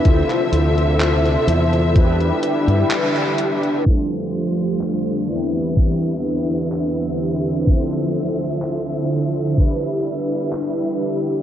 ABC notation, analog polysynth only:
X:1
M:4/4
L:1/8
Q:1/4=63
K:Ddor
V:1 name="Analog polysynth"
[EFAc]4 [DEGB]4 | [F,DGA]3 [E,DEGB]4- [E,DEGB] | [D,EFAc]4 [DEGB]4 |]